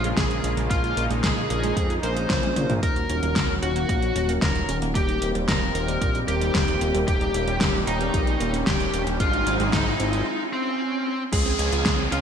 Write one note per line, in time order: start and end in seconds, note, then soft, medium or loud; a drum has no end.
0.00 0.14 A#1 medium
0.00 2.79 C#3 medium
0.00 2.79 F3 medium
0.00 2.79 G#3 medium
0.00 2.79 A#3 medium
0.00 0.67 F4 medium
0.04 0.14 G#3 loud
0.04 closed hi-hat soft
0.17 0.41 A#1 loud
0.17 0.30 G#3 loud
0.17 0.51 G#4 medium
0.17 kick loud
0.17 snare loud
0.17 closed hi-hat medium
0.31 0.41 F4 medium
0.31 closed hi-hat soft
0.44 0.56 A#1 loud
0.44 0.57 A#3 medium
0.44 closed hi-hat medium
0.57 0.69 A#1 loud
0.57 0.68 G#3 loud
0.57 closed hi-hat medium
0.70 0.94 A#1 loud
0.70 0.83 G#3 medium
0.70 2.81 D#4 medium
0.70 1.04 F4 medium
0.70 kick loud
0.70 closed hi-hat medium
0.84 0.94 F4 medium
0.84 closed hi-hat soft
0.97 1.09 A#1 medium
0.97 1.10 A#3 medium
0.97 closed hi-hat medium
1.10 1.22 A#1 medium
1.10 1.21 G#3 loud
1.10 closed hi-hat medium
1.23 1.47 A#1 medium
1.23 1.36 G#3 loud
1.23 1.93 G#4 medium
1.23 kick loud
1.23 snare loud
1.23 closed hi-hat medium
1.37 1.47 F4 medium
1.50 1.73 A#1 medium
1.50 1.63 A#3 medium
1.50 closed hi-hat medium
1.63 1.74 G#3 loud
1.63 closed hi-hat medium
1.77 2.00 F2 medium
1.77 1.89 G#3 loud
1.77 kick loud
1.77 closed hi-hat medium
1.90 2.00 F4 medium
1.90 closed hi-hat soft
2.03 2.26 A#1 medium
2.03 2.14 A#3 loud
2.03 2.72 C5 medium
2.03 closed hi-hat medium
2.16 2.27 G#3 medium
2.16 closed hi-hat medium
2.30 2.53 A#1 medium
2.30 2.40 C#4 loud
2.30 kick loud
2.30 snare loud
2.30 closed hi-hat medium
2.43 2.53 C#4 loud
2.43 closed hi-hat soft
2.43 high tom medium
2.56 2.68 A#1 medium
2.56 2.67 C#4 medium
2.56 closed hi-hat medium
2.56 mid tom medium
2.69 2.81 A#1 loud
2.69 2.80 A#3 loud
2.69 closed hi-hat medium
2.69 mid tom medium
2.83 3.06 D#1 loud
2.83 10.22 D#3 medium
2.83 4.93 F#3 medium
2.83 2.95 A#3 loud
2.83 9.16 A#3 medium
2.83 4.93 C#4 medium
2.83 4.93 F#4 medium
2.83 3.52 A#4 medium
2.83 kick loud
2.83 closed hi-hat medium
2.83 riser medium
2.96 3.06 F#4 medium
2.96 closed hi-hat soft
3.09 3.21 D#1 medium
3.09 3.22 C#4 medium
3.09 closed hi-hat medium
3.23 3.34 D#1 medium
3.23 3.33 A#3 loud
3.23 closed hi-hat medium
3.36 3.49 A#3 loud
3.36 kick loud
3.36 snare loud
3.36 closed hi-hat medium
3.49 3.60 F#4 medium
3.63 3.86 D#1 medium
3.63 3.75 C#4 medium
3.63 4.32 F#4 medium
3.63 closed hi-hat medium
3.76 3.86 A#3 loud
3.76 closed hi-hat medium
3.89 4.12 A#1 medium
3.89 4.02 A#3 loud
3.89 kick loud
3.89 closed hi-hat medium
4.02 4.13 F#4 medium
4.02 closed hi-hat soft
4.16 4.39 D#1 medium
4.16 4.28 C#4 medium
4.16 closed hi-hat medium
4.29 4.39 A#3 loud
4.29 closed hi-hat medium
4.42 4.65 D#1 loud
4.42 4.55 A#3 loud
4.42 4.76 A#4 medium
4.42 kick loud
4.42 snare loud
4.42 closed hi-hat medium
4.55 4.66 F#4 medium
4.55 closed hi-hat soft
4.69 4.80 D#1 medium
4.69 4.81 C#4 medium
4.69 closed hi-hat medium
4.82 4.94 D#1 loud
4.82 4.92 A#3 loud
4.82 closed hi-hat medium
4.95 5.19 D#1 loud
4.95 5.08 G3 loud
4.95 7.06 G3 medium
4.95 7.06 C4 medium
4.95 9.16 G4 medium
4.95 5.29 G4 medium
4.95 kick loud
4.95 closed hi-hat medium
5.09 5.19 D#4 medium
5.09 closed hi-hat soft
5.22 5.33 D#1 medium
5.22 5.34 A#3 medium
5.22 closed hi-hat medium
5.35 5.47 D#1 loud
5.35 5.45 G3 loud
5.35 closed hi-hat medium
5.48 5.61 G3 loud
5.48 6.17 A#4 medium
5.48 kick loud
5.48 snare loud
5.48 closed hi-hat medium
5.62 5.72 D#4 medium
5.75 5.98 D#1 medium
5.75 5.88 A#3 medium
5.75 closed hi-hat medium
5.88 5.99 G3 loud
5.88 closed hi-hat medium
6.02 6.25 A#1 medium
6.02 6.14 G3 loud
6.02 kick loud
6.02 closed hi-hat medium
6.15 6.25 D#4 medium
6.15 closed hi-hat soft
6.28 6.51 D#1 medium
6.28 6.41 A#3 medium
6.28 6.97 G4 medium
6.28 closed hi-hat medium
6.41 6.52 G3 loud
6.41 closed hi-hat medium
6.55 6.78 D#1 loud
6.55 6.67 G3 loud
6.55 kick loud
6.55 snare loud
6.55 closed hi-hat medium
6.68 6.78 D#4 medium
6.68 closed hi-hat soft
6.81 6.93 D#1 loud
6.81 6.94 A#3 medium
6.81 closed hi-hat medium
6.94 7.06 D#1 loud
6.94 7.05 G3 loud
6.94 closed hi-hat medium
7.08 7.31 D#1 loud
7.08 9.18 G3 medium
7.08 7.20 G3 loud
7.08 9.18 C#4 medium
7.08 7.77 G4 loud
7.08 kick loud
7.08 closed hi-hat medium
7.21 7.31 D#4 medium
7.21 closed hi-hat soft
7.34 7.46 D#1 medium
7.34 7.47 A#3 medium
7.34 closed hi-hat medium
7.48 7.59 D#1 medium
7.48 7.58 G3 loud
7.48 closed hi-hat medium
7.61 7.84 D#1 loud
7.61 7.74 G3 loud
7.61 kick loud
7.61 snare loud
7.61 closed hi-hat medium
7.74 7.84 D#4 medium
7.87 8.11 D#1 medium
7.87 8.00 A#3 medium
7.87 8.56 D#4 loud
7.87 closed hi-hat medium
8.01 8.11 G3 loud
8.01 closed hi-hat medium
8.14 8.37 A#1 medium
8.14 8.27 G3 loud
8.14 kick loud
8.14 closed hi-hat medium
8.27 8.37 D#4 medium
8.27 closed hi-hat soft
8.40 8.64 D#1 medium
8.40 8.53 A#3 medium
8.40 closed hi-hat medium
8.54 8.64 G3 loud
8.54 closed hi-hat medium
8.67 8.90 D#1 loud
8.67 8.80 G3 loud
8.67 9.00 G4 medium
8.67 kick loud
8.67 snare loud
8.67 closed hi-hat medium
8.80 8.90 D#4 medium
8.80 closed hi-hat soft
8.93 9.05 D#1 medium
8.93 9.06 A#3 medium
8.93 closed hi-hat medium
9.07 9.18 D#1 loud
9.07 9.17 G3 loud
9.07 closed hi-hat medium
9.20 9.43 G#1 loud
9.20 10.25 F#3 medium
9.20 9.33 G#3 loud
9.20 10.25 G#3 medium
9.20 10.25 C4 medium
9.20 9.53 F4 medium
9.20 10.25 G#4 medium
9.20 kick loud
9.20 closed hi-hat medium
9.33 9.44 F#4 medium
9.33 closed hi-hat soft
9.47 9.58 G#1 medium
9.47 9.59 C4 medium
9.47 closed hi-hat medium
9.60 9.72 G#1 loud
9.60 9.70 G#3 loud
9.60 closed hi-hat medium
9.73 9.96 G#1 loud
9.73 9.86 G#3 loud
9.73 10.42 D#4 medium
9.73 kick loud
9.73 snare loud
9.73 closed hi-hat medium
9.86 9.97 F#4 medium
10.00 10.23 G#1 medium
10.00 10.12 C4 medium
10.00 closed hi-hat medium
10.13 10.23 G#3 loud
10.13 closed hi-hat medium
10.26 swell medium
10.53 11.22 C4 loud
11.32 11.56 C#2 loud
11.32 12.21 C#3 medium
11.32 12.21 F3 medium
11.32 11.39 G#3 loud
11.32 12.21 G#3 medium
11.32 12.21 C4 medium
11.32 12.21 F4 medium
11.32 12.02 G#4 loud
11.32 kick loud
11.32 closed hi-hat medium
11.32 crash loud
11.32 downlifter medium
11.46 11.52 C4 loud
11.46 closed hi-hat soft
11.59 11.71 C#2 medium
11.59 11.65 C#4 medium
11.59 closed hi-hat medium
11.72 11.84 C#2 loud
11.72 11.85 F4 medium
11.72 closed hi-hat medium
11.85 11.92 G#3 loud
11.85 kick loud
11.85 snare loud
11.85 closed hi-hat medium
11.99 12.05 C4 loud
12.12 12.21 C#2 medium
12.12 12.18 C#4 medium
12.12 12.21 F4 loud
12.12 closed hi-hat medium